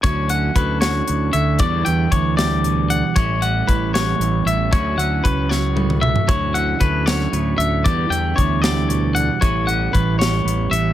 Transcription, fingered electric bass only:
\new Staff \with { instrumentName = "Fingered electric bass" } { \clef bass \time 6/8 \key d \major \tempo 4. = 77 d,4 d,4 d,8 d,8 | e,8 e,8 d,2 | a,,4 a,,4 a,,8 a,,8 | d,8 d,8 cis,2 |
d,4 d,4 d,8 d,8 | e,8 e,8 d,2 | a,,4 a,,4 a,,8 a,,8 | }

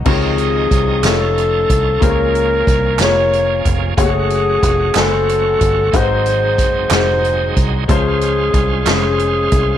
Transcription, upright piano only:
<<
  \new Staff \with { instrumentName = "Upright piano" } { \time 6/8 \key des \major \tempo 4. = 61 <c ees' f' des''>4 r8 <aes a ees' f' des''>4 r8 | <bes f' aes' c'' des''>4 r8 <bes f' aes' des''>4 r8 | <aes a ges' aes' des''>4 r8 <a ges' c'' aes''>4 r8 | <aes ees' ges' ces'' c''>4 r8 <aes ees' ges' aes'>4 r8 |
<aes des' f' c''>4 r8 <aes des' f' c''>4 r8 | }
  \new Staff \with { instrumentName = "Upright piano" } { \clef bass \time 6/8 \key des \major ees4. r4. | des'4. r4. | r2. | aes,4. r4. |
f4. r4. | }
>>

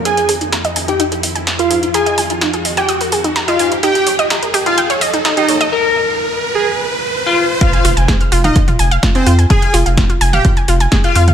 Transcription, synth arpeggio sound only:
\new Staff \with { instrumentName = "Synth arpeggio sound" } { \time 4/4 \key f \minor \tempo 4 = 127 ees'''16 bes'16 aes'16 ees'16 bes''16 ees''16 aes''16 ees'16 ees'16 aes'16 ees''16 aes''16 ees'''16 bes'16 aes'16 ees'16 | bes''16 ees''16 aes''16 ees'16 ees'16 aes'16 ees''16 aes''16 ees'''16 bes'16 aes'16 ees'16 bes''16 ees''16 aes''16 ees'16 | ees'16 g'16 des''16 ees''16 bes''16 bes'16 g'16 ees'16 g''16 des''16 ees''16 ees'16 ees'16 g'16 des''16 ees''16 | r1 |
<f' f''>16 <aes'' aes'''>16 <f' f''>16 <aes'' aes'''>16 <aes' aes''>16 f'''16 <f' f''>16 <f'' f'''>16 <f' f''>16 <f' f''>16 <aes'' aes'''>16 <f'' f'''>16 <f' f''>16 <aes'' aes'''>16 <f' f''>16 <aes'' aes'''>16 | <aes' aes''>16 f'''16 <f' f''>16 <f'' f'''>16 <f' f''>16 <f' f''>16 <aes'' aes'''>16 <f'' f'''>16 <f' f''>16 <aes'' aes'''>16 <f' f''>16 <aes'' aes'''>16 <aes' aes''>16 f'''16 <f' f''>16 <f'' f'''>16 | }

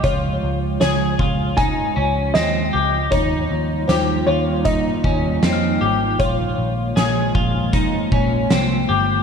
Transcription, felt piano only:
\new Staff \with { instrumentName = "Felt piano" } { \time 4/4 \key ees \mixolydian \tempo 4 = 78 des''4 des''4 aes''4 ees''4 | des''4 c''8 des''8 ees''2 | des''2. r4 | }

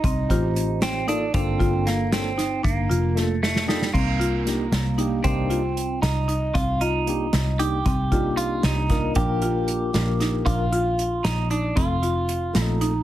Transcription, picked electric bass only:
\new Staff \with { instrumentName = "Picked electric bass" } { \clef bass \time 5/8 \key c \dorian \tempo 4 = 115 c,8 a,,2 | g,,8 g,,2 | g,,8 f,,2 | c,4. c,4 |
c,4. c,4 | c,4. c,4 | c,4. c,4 | bes,,4. bes,,4 |
bes,,4. bes,,4 | f,,4. bes,,4 | }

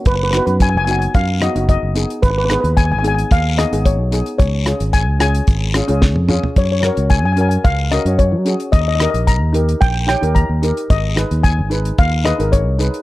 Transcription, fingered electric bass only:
\new Staff \with { instrumentName = "Fingered electric bass" } { \clef bass \time 4/4 \key gis \dorian \tempo 4 = 111 fis,,8. fis,8 fis,,8. fis,8. fis,,8 fis,,8 r16 | gis,,8. dis,8 gis,,8. dis,8. gis,,8 b,,8 r16 | cis,8. gis,,8 cis,8. gis,,8. cis,8 eis,8 r16 | fis,8. cis,8 fis,8. cis,8. fis,8 fis8 r16 |
dis,8. ais,,8 dis,8. ais,,8. dis,8 dis,8 r16 | gis,,8. dis,8 gis,,8. dis,8. gis,,8 bis,,8 r16 | }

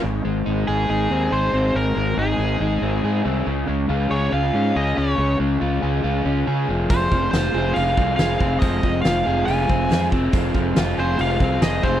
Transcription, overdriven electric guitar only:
\new Staff \with { instrumentName = "Overdriven electric guitar" } { \time 4/4 \key aes \mixolydian \tempo 4 = 140 aes,8 aes8 ees'8 aes'8 ees'8 c'8 aes'8 c'8 | aes,8 aes8 ees'8 aes'8 ees'8 c'8 aes'8 c'8 | des8 aes8 f'8 aes'8 f'8 des'8 aes'8 des'8 | des8 aes8 f'8 aes'8 f'8 des'8 aes'8 f8 |
f8 f8 f'8 aes'8 f'8 c'8 aes'8 c'8 | f8 f8 f'8 aes'8 f'8 c'8 aes'8 c'8 | f8 f8 f'8 aes'8 f'8 c'8 aes'8 c'8 | }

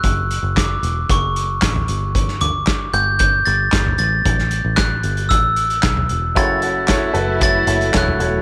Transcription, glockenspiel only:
\new Staff \with { instrumentName = "Glockenspiel" } { \time 4/4 \key a \mixolydian \tempo 4 = 114 fis'''4 d'''4 cis'''4. r8 | r8 d'''4 g'''8 g'''8 a'''4 a'''8~ | a'''4 fis'''4 e'''4. r8 | a'''2 a'''4 fis'''4 | }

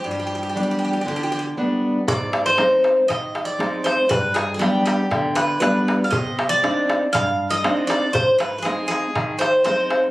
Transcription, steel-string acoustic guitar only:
\new Staff \with { instrumentName = "Steel-string acoustic guitar" } { \time 4/4 \tempo 4 = 118 g,4 <g b d'>4 d4 <g b d'>4 | aes,4 <aes c' ees'>4 ees4 <aes c' ees'>4 | g,4 <g b d'>4 d4 <g b d'>4 | c4 <c' d' ees'>4 g,4 <c' d' ees'>4 |
aes,4 <aes c' ees'>4 ees4 <aes c' ees'>4 | }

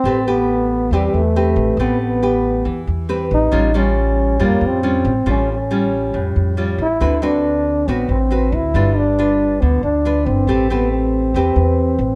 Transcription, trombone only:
\new Staff \with { instrumentName = "Trombone" } { \time 4/4 \key a \minor \tempo 4 = 138 c'8 b4. g8 a4. | b8 b2 r4 dis'8~ | dis'8 cis'4. bes8 bis4. | cis'8 cis'2 r4 e'8~ |
e'8 d'4. b8 c'4 e'8~ | e'8 d'4. b8 d'4 c'8~ | c'8 b8 c'2. | }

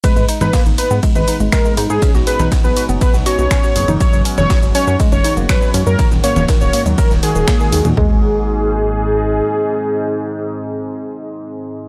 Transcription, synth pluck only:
\new Staff \with { instrumentName = "Synth pluck" } { \time 4/4 \key gis \minor \tempo 4 = 121 gis16 gis16 dis'16 dis'16 ais16 dis'16 dis'16 b16 gis16 gis16 dis'16 gis16 gis16 gis16 dis'16 dis'16 | cis'16 fis'16 gis'16 dis'16 b16 b16 fis'16 b16 b16 b16 fis'16 fis'16 cis'16 fis'16 gis'16 dis'16 | fis16 fis16 cis'16 fis16 fis16 fis16 cis'16 cis'16 gis16 cis'16 dis'16 ais16 fis16 fis16 cis'16 fis16 | dis16 dis16 ais16 ais16 dis16 ais16 ais16 fis16 dis16 dis16 dis16 dis16 ais16 dis16 dis16 ais,16 |
gis8 r2. r8 | r1 | }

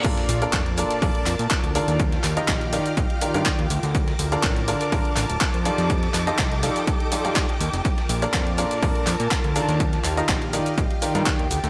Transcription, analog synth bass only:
\new Staff \with { instrumentName = "Analog synth bass" } { \clef bass \time 4/4 \key bes \major \tempo 4 = 123 r8 bes,,16 r16 f,8. r16 f,16 r16 f,16 bes,16 r16 d,16 r16 ees,16~ | ees,8 ees,16 r16 bes,,8. r16 bes,,16 r8 g,16 r16 ees,16 d,16 d,16~ | d,8 d,16 r16 a,,8. r16 a,,16 r16 a,,16 d,,16 r16 f,16 r16 f,16~ | f,8 f,16 r16 c,8. r4. r16 ees,16 f,,16 |
r8 bes,,16 r16 f,8. r16 f,16 r16 f,16 bes,16 r16 d,16 r16 ees,16~ | ees,8 ees,16 r16 bes,,8. r16 bes,,16 r8 g,16 r16 ees,16 d,16 d,16 | }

